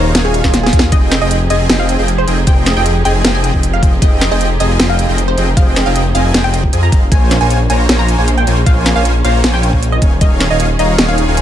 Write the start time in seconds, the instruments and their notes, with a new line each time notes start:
Already playing: detuned saw bass D#1, supersaw synth D#3 D#4 C#5 F5 A#5, string section D#3 C#4 F4 G#4, synth pluck C5
0.15 detuned saw bass D#1, supersaw synth D#3 D#4 C#5 F5 G#5, snare, closed hi-hat, swell
0.25 synth pluck G#4
0.34 closed hi-hat
0.44 detuned saw bass D#1, supersaw synth D#3 D#4 C#5 F5 G#5, kick, snare
0.54 snare, closed hi-hat
0.63 synth pluck G#4, snare
0.73 detuned saw bass D#2, supersaw synth D#3 D#4 C#5 F5 G#5, kick, closed hi-hat
0.79 snare
0.92 detuned saw bass F1, string section F3 D#4 G4, supersaw synth F3 C4 G#4 D#5 G5, synth pluck D#5, kick, closed hi-hat
1.12 snare, closed hi-hat
1.21 detuned saw bass F1, supersaw synth F3 C4 G#4 D#5 G5, synth pluck D#5
1.31 closed hi-hat
1.50 detuned saw bass F1, supersaw synth F3 C4 G#4 D#5 G#5, synth pluck D#5, closed hi-hat
1.69 detuned saw bass F1, supersaw synth F3 C4 G#4 D#5 G5, snare, closed hi-hat
1.80 synth pluck F5
1.89 closed hi-hat
1.99 detuned saw bass F1, supersaw synth F3 C4 G#4 D#5 G5
2.08 closed hi-hat
2.18 synth pluck C5
2.28 detuned saw bass F1, supersaw synth F3 C4 G#4 D#5 G5, closed hi-hat
2.47 detuned saw bass F1, supersaw synth F3 C4 G#4 D#5 G5, synth pluck G5, kick, closed hi-hat
2.66 snare, closed hi-hat
2.76 detuned saw bass F1, supersaw synth F3 C4 G#4 D#5 G5, synth pluck G5
2.86 closed hi-hat
3.05 detuned saw bass F1, supersaw synth F3 C4 G#4 D#5 G#5, synth pluck G5, closed hi-hat
3.24 detuned saw bass F1, supersaw synth F3 C4 G#4 D#5 G5, snare, closed hi-hat
3.35 synth pluck G#5
3.44 closed hi-hat
3.54 detuned saw bass F1, supersaw synth F3 C4 G#4 D#5 G5, kick
3.63 closed hi-hat
3.74 synth pluck F5
3.83 detuned saw bass F1, supersaw synth F3 C4 G#4 D#5 G5, kick, closed hi-hat
4.02 detuned saw bass F1, supersaw synth F3 C4 G#4 D#5 G5, synth pluck D#5, kick, closed hi-hat
4.21 snare, closed hi-hat
4.31 detuned saw bass F1, supersaw synth F3 C4 G#4 D#5 G5, synth pluck D#5
4.41 closed hi-hat
4.60 detuned saw bass F1, supersaw synth F3 C4 G#4 D#5 G#5, synth pluck D#5, closed hi-hat
4.79 detuned saw bass F1, supersaw synth F3 C4 G#4 D#5 G5, snare, closed hi-hat
4.90 synth pluck F5
4.99 closed hi-hat
5.09 detuned saw bass F1, supersaw synth F3 C4 G#4 D#5 G5
5.18 closed hi-hat
5.28 synth pluck C5
5.37 detuned saw bass F1, supersaw synth F3 C4 G#4 D#5 G5, closed hi-hat
5.57 detuned saw bass F1, supersaw synth F3 C4 G#4 D#5 G5, synth pluck F5, kick, closed hi-hat
5.76 snare, closed hi-hat
5.86 detuned saw bass F1, supersaw synth F3 C4 G#4 D#5 G5, synth pluck F5
5.96 closed hi-hat
6.15 detuned saw bass F1, supersaw synth F3 C4 G#4 D#5 G#5, synth pluck F5, closed hi-hat
6.34 detuned saw bass F1, supersaw synth F3 C4 G#4 D#5 G5, snare, closed hi-hat
6.44 synth pluck G5
6.54 closed hi-hat
6.63 kick
6.73 detuned saw bass F2, supersaw synth F3 C4 G#4 D#5 G#5, closed hi-hat
6.83 synth pluck A#5
6.92 detuned saw bass F1, supersaw synth F3 C4 G#4 D#5 F5, kick, closed hi-hat
7.11 detuned saw bass A#1, string section G#3 A#3 C#4, supersaw synth A#3 F4 C5 C#5 G#5, synth pluck G#5, kick, closed hi-hat
7.31 snare, closed hi-hat
7.41 detuned saw bass A#1, supersaw synth A#3 F4 C5 C#5 G#5, synth pluck G#5
7.50 closed hi-hat
7.69 detuned saw bass A#1, supersaw synth A#3 F4 C5 C#5 A#5, synth pluck G#5, closed hi-hat
7.89 detuned saw bass A#1, supersaw synth A#3 F4 C5 C#5 G#5, snare, closed hi-hat
7.99 synth pluck A#5
8.08 closed hi-hat
8.18 detuned saw bass A#1, supersaw synth A#3 F4 C5 C#5 G#5
8.28 closed hi-hat
8.38 synth pluck G5
8.47 detuned saw bass A#1, supersaw synth A#3 F4 C5 C#5 G#5, closed hi-hat
8.66 detuned saw bass A#1, supersaw synth A#3 F4 C5 C#5 G#5, synth pluck F5, kick, closed hi-hat
8.86 snare, closed hi-hat
8.96 detuned saw bass A#1, supersaw synth A#3 F4 C5 C#5 G#5, synth pluck F5
9.05 closed hi-hat
9.24 detuned saw bass A#1, supersaw synth A#3 F4 C5 C#5 A#5, synth pluck F5, closed hi-hat
9.44 detuned saw bass A#1, supersaw synth A#3 F4 C5 C#5 G#5, snare, closed hi-hat
9.54 synth pluck G5
9.63 closed hi-hat
9.73 detuned saw bass A#1, supersaw synth A#3 F4 C5 C#5 G#5, kick
9.83 closed hi-hat
9.92 synth pluck D#5
10.02 detuned saw bass D#1, string section D#3 F4 G#4, supersaw synth D#3 D#4 C#5 F5 G#5, kick, closed hi-hat
10.21 detuned saw bass D#1, supersaw synth D#3 D#4 C#5 F5 G#5, synth pluck D#5, kick, closed hi-hat
10.40 snare, closed hi-hat
10.50 detuned saw bass D#1, supersaw synth D#3 D#4 C#5 F5 G#5, synth pluck D#5
10.60 closed hi-hat
10.79 detuned saw bass D#1, supersaw synth D#3 D#4 C#5 F5 A#5, synth pluck D#5, closed hi-hat
10.98 detuned saw bass D#1, supersaw synth D#3 D#4 C#5 F5 G#5, snare, closed hi-hat
11.09 synth pluck F5
11.18 closed hi-hat
11.28 detuned saw bass D#1, supersaw synth D#3 D#4 C#5 F5 G#5
11.37 closed hi-hat